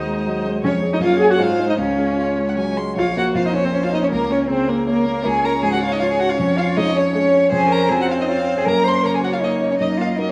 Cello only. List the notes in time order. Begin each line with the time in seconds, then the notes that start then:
Already playing: G#3
0.65 G#3
1.01 A#3
1.39 G#3
1.80 G#3
2.98 F4
3.17 F#4
3.35 F4
3.46 D#4
3.54 C#4
3.64 C4
3.72 C#4
3.83 F4
3.91 D#4
4.02 C#4
4.11 A#3
4.30 C#4
4.48 C4
4.68 A#3
4.88 A#3
5.26 G#4
5.45 A#4
5.63 G#4
5.73 F#4
5.82 F4
5.92 D#4
6.01 F4
6.11 G#4
6.19 F#4
6.29 F4
6.38 C#4
6.58 F4
6.78 D#4
6.95 C#4
7.14 C#4
7.52 G#4
7.70 A#4
7.89 G#4
7.99 F#4
8.09 F4
8.20 D#4
8.29 F4
8.57 G#4
8.65 A#4
8.84 C5
9.04 A#4
9.14 G#4
9.22 F#4
9.32 F4
9.41 D#4
9.70 C#4
9.78 D#4
9.97 F4
10.16 D#4
10.28 C#4